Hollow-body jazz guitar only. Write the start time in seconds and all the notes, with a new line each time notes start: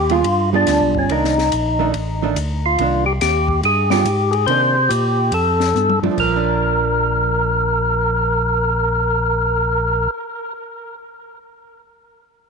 0.10 G3 B3 F4 G#4
0.53 G3 B3 F4 G#4
1.10 D#3 A#3 D4
1.79 D#3 A3 D4
2.22 D#3 A3 D4
2.80 D#3 A#3 D4
3.91 G3 B3 F4 G#4
4.49 D#3 A#3 D4
6.03 F3 A3 D4
6.11 F3
6.36 D4